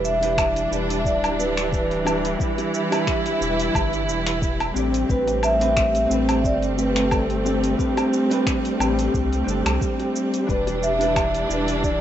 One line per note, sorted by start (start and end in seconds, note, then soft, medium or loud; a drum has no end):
0.00 0.67 E1 medium
0.00 4.71 E3 medium
0.00 4.71 G3 medium
0.00 0.17 D4 medium
0.00 2.37 D4 medium
0.00 0.18 E4 medium
0.00 0.18 G4 medium
0.00 0.19 B4 medium
0.04 0.68 E5 loud
0.04 shaker medium
0.21 0.67 D4 medium
0.21 0.67 E4 medium
0.21 0.68 G4 medium
0.21 0.68 B4 loud
0.21 open hi-hat medium
0.21 shaker soft
0.38 finger snap medium
0.38 kick loud
0.38 low woodblock medium
0.38 shaker soft
0.56 open hi-hat soft
0.56 shaker soft
0.68 1.07 E1 medium
0.68 2.02 D4 medium
0.68 2.03 E4 medium
0.72 2.04 G4 medium
0.72 2.05 B4 medium
0.72 shaker medium
0.90 open hi-hat medium
0.90 shaker soft
1.00 1.06 E5 medium
1.05 2.36 D1 medium
1.05 1.40 D5 loud
1.05 kick medium
1.05 shaker soft
1.24 open hi-hat soft
1.24 low woodblock medium
1.24 shaker soft
1.39 1.54 B4 medium
1.39 high bongo soft
1.39 shaker medium
1.57 finger snap medium
1.57 open hi-hat medium
1.57 shaker soft
1.72 2.22 B4 medium
1.72 kick loud
1.72 shaker soft
1.91 open hi-hat soft
2.05 2.35 D4 medium
2.05 2.36 E4 medium
2.05 2.37 G4 medium
2.05 2.37 E5 loud
2.05 high bongo medium
2.05 low woodblock medium
2.05 shaker medium
2.25 open hi-hat medium
2.25 shaker soft
2.38 2.87 D4 medium
2.38 2.87 E4 medium
2.38 4.73 E4 medium
2.38 2.88 G4 medium
2.38 2.88 B4 medium
2.38 kick loud
2.38 shaker soft
2.58 open hi-hat soft
2.58 high bongo medium
2.58 shaker soft
2.74 shaker medium
2.90 3.36 D4 loud
2.90 3.37 E4 medium
2.90 3.38 G4 medium
2.90 3.38 B4 loud
2.90 open hi-hat medium
2.90 high bongo medium
2.90 low woodblock medium
2.90 shaker soft
3.07 finger snap medium
3.07 kick loud
3.07 shaker soft
3.26 open hi-hat soft
3.26 shaker soft
3.38 3.70 E1 medium
3.38 4.71 D4 medium
3.38 4.72 E4 medium
3.38 4.73 G4 medium
3.42 4.74 B4 medium
3.42 shaker medium
3.60 open hi-hat medium
3.60 shaker soft
3.74 4.10 G1 medium
3.74 kick loud
3.74 low woodblock medium
3.74 shaker medium
3.93 open hi-hat soft
3.93 shaker soft
4.08 4.72 E1 medium
4.08 shaker medium
4.27 finger snap medium
4.27 open hi-hat medium
4.27 shaker soft
4.42 kick loud
4.42 shaker soft
4.60 open hi-hat soft
4.60 high bongo soft
4.60 low woodblock medium
4.74 5.04 A1 medium
4.74 12.01 G3 medium
4.74 10.45 A3 medium
4.74 5.05 C4 medium
4.74 10.44 C4 medium
4.74 5.05 D4 medium
4.74 5.06 G4 medium
4.74 5.06 D5 medium
4.74 shaker medium
4.94 open hi-hat medium
4.94 shaker soft
5.08 6.07 A1 loud
5.08 5.56 C4 medium
5.08 5.57 D4 medium
5.08 5.57 G4 medium
5.08 5.44 B4 loud
5.08 5.58 B4 medium
5.08 kick loud
5.08 shaker soft
5.27 open hi-hat soft
5.27 high bongo medium
5.27 shaker soft
5.43 6.07 E5 loud
5.43 low woodblock medium
5.43 shaker medium
5.60 6.06 C4 medium
5.60 6.06 D4 medium
5.60 6.07 G4 loud
5.60 6.07 B4 loud
5.60 open hi-hat medium
5.60 shaker soft
5.77 finger snap medium
5.77 kick loud
5.77 shaker soft
5.95 open hi-hat soft
5.95 shaker soft
6.07 6.46 A1 medium
6.07 7.41 C4 medium
6.07 7.41 D4 medium
6.11 7.43 G4 medium
6.11 7.44 B4 medium
6.11 shaker medium
6.29 open hi-hat medium
6.29 low woodblock medium
6.29 shaker soft
6.39 6.45 E5 medium
6.44 7.75 G1 medium
6.44 6.61 D5 loud
6.44 kick loud
6.44 shaker medium
6.62 open hi-hat soft
6.62 shaker soft
6.78 7.13 B4 medium
6.78 high bongo medium
6.78 shaker medium
6.96 finger snap medium
6.96 open hi-hat medium
6.96 shaker soft
7.11 7.60 A4 medium
7.11 kick loud
7.11 low woodblock medium
7.11 shaker soft
7.30 open hi-hat soft
7.44 7.75 C4 medium
7.44 7.75 D4 medium
7.44 7.76 G4 medium
7.44 7.76 D5 medium
7.44 high bongo medium
7.44 shaker medium
7.64 open hi-hat medium
7.64 shaker soft
7.77 8.26 C4 medium
7.77 8.26 D4 medium
7.77 8.27 G4 medium
7.77 8.27 B4 medium
7.77 kick loud
7.77 shaker soft
7.97 open hi-hat soft
7.97 high bongo medium
7.97 low woodblock medium
7.97 shaker soft
8.13 shaker medium
8.30 8.76 C4 loud
8.30 8.76 D4 medium
8.30 8.77 G4 medium
8.30 8.77 B4 loud
8.30 open hi-hat medium
8.30 high bongo medium
8.30 shaker soft
8.47 finger snap medium
8.47 kick loud
8.47 shaker soft
8.65 open hi-hat soft
8.65 shaker soft
8.78 9.09 A1 medium
8.78 9.43 C4 medium
8.78 9.44 D4 medium
8.78 9.45 G4 medium
8.78 9.45 B4 medium
8.78 low woodblock medium
8.78 shaker medium
8.99 open hi-hat medium
8.99 shaker soft
9.14 9.43 C2 medium
9.14 kick loud
9.14 shaker soft
9.33 open hi-hat soft
9.33 shaker soft
9.44 9.63 G1 medium
9.44 10.43 C4 medium
9.44 10.44 D4 medium
9.44 10.45 G4 medium
9.48 10.46 A4 medium
9.48 shaker medium
9.65 9.79 C2 medium
9.65 finger snap medium
9.65 open hi-hat medium
9.65 low woodblock medium
9.65 shaker soft
9.81 kick loud
9.81 shaker soft
10.00 open hi-hat soft
10.00 high bongo soft
10.16 shaker medium
10.34 open hi-hat medium
10.34 shaker soft
10.47 11.46 E1 medium
10.47 12.01 E3 medium
10.47 10.95 D4 medium
10.47 12.01 D4 medium
10.47 10.50 E4 medium
10.47 10.97 G4 medium
10.47 10.84 B4 medium
10.47 10.97 B4 medium
10.47 kick loud
10.47 shaker soft
10.67 open hi-hat soft
10.67 high bongo medium
10.67 shaker soft
10.83 11.46 E5 loud
10.83 shaker medium
10.99 11.45 D4 loud
10.99 11.46 E4 medium
10.99 11.46 G4 medium
10.99 11.47 B4 loud
10.99 open hi-hat medium
10.99 shaker soft
11.16 finger snap medium
11.16 kick loud
11.16 low woodblock medium
11.16 shaker soft
11.35 open hi-hat soft
11.35 shaker soft
11.47 11.85 E1 medium
11.47 12.01 D4 medium
11.47 12.01 E4 medium
11.47 shaker medium
11.51 12.01 G4 medium
11.51 12.01 B4 medium
11.68 open hi-hat medium
11.68 shaker soft
11.83 12.01 D1 medium
11.83 12.01 D5 loud
11.83 kick loud
11.83 shaker soft